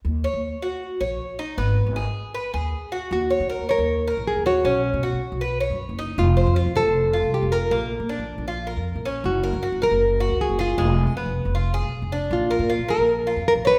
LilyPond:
<<
  \new Staff \with { instrumentName = "Cuban tres" } { \time 4/4 \key ees \minor \tempo 4 = 156 r8 des''4 ges'4 des''4 ees'8 | ces'4 aes'4 ces''8 aes'4 ges'8 | r8 des''8 bes'8 des''4 bes'4 des''8 | cis'4 fis'4 b'8 cis''4 dis'8~ |
dis'8 c''8 f'8 c''4 f'4 bes'8 | bes4 d'4 f'8 bes'4 des'8~ | des'8 bes'8 ges'8 bes'4 ges'4 aes'8 | aes4 ces'4 f'8 aes'4 d'8~ |
d'8 bes'8 f'8 bes'4 f'4 des''8 | }
  \new Staff \with { instrumentName = "Nylon-string guitar" } { \time 4/4 \key ees \minor r1 | r1 | ges'4. bes'4. aes'8 ges'8~ | ges'8 r2. r8 |
f'4. a'4. g'8 f'8~ | f'8 r2. r8 | ges'4. bes'4. aes'8 f'8~ | f'8 r2. r8 |
f'4. bes'4. bes'8 ces''8 | }
  \new Staff \with { instrumentName = "Upright bass" } { \clef bass \time 4/4 \key ees \minor ees,8. ees,8 r4 r16 bes,,8 r4 | aes,,8. aes,,8 r4 r16 ees,8 r4 | ees,8. ees8 ees,8 ees,4 bes,,8 ees,8. | b,,8. b,8 b,,8 b,,4 fis,8 fis,,8. |
f,,8. f,8 f,,8 f,,4 c,8 f,,8. | bes,,8. bes,8 bes,,8 bes,,4 f,8 bes,,8. | ges,,8. ges,8 ges,,8 ges,,4 des,8 ges,,8. | f,,8. f,8 f,,8 f,,4 ces,8 f,,8. |
bes,,8. bes,8 bes,,8 bes,,4 f,8 bes,,8. | }
>>